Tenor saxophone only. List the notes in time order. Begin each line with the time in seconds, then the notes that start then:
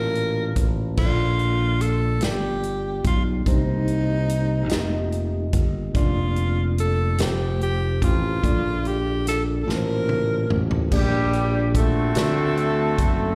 Already playing: A#4
0.98 F4
1.81 A4
2.23 G4
3.07 F4
3.48 D#4
5.96 F4
6.80 A4
7.21 G4
7.63 G4
8.04 F4
8.87 G4
9.28 A4
9.63 A4
9.71 A#4
10.95 G3
11.78 A3